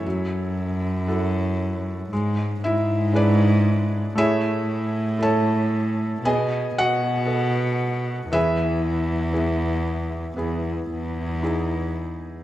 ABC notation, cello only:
X:1
M:4/4
L:1/8
Q:1/4=58
K:E
V:1 name="Cello" clef=bass
F,,4 G,, G,,3 | A,,4 B,, B,,3 | E,,4 E,, E,,3 |]